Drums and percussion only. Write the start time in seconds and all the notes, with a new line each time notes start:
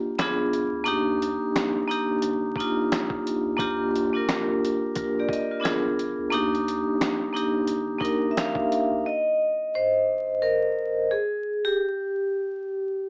0.19 finger snap, snare, closed hi-hat
0.54 closed hi-hat
0.86 closed hi-hat
1.22 closed hi-hat
1.55 finger snap, snare, closed hi-hat
1.91 closed hi-hat
2.22 closed hi-hat
2.56 kick
2.60 closed hi-hat
2.92 finger snap, snare, closed hi-hat
3.10 kick
3.27 closed hi-hat
3.59 kick, closed hi-hat
3.96 closed hi-hat
4.29 finger snap, snare, closed hi-hat
4.64 closed hi-hat
4.95 kick, closed hi-hat
5.28 kick
5.33 closed hi-hat
5.65 finger snap, snare, closed hi-hat
5.99 closed hi-hat
6.32 closed hi-hat
6.55 closed hi-hat
6.68 closed hi-hat
7.01 finger snap, snare, closed hi-hat
7.36 closed hi-hat
7.67 closed hi-hat
8.01 kick
8.05 closed hi-hat
8.37 finger snap, snare, closed hi-hat
8.55 kick
8.72 closed hi-hat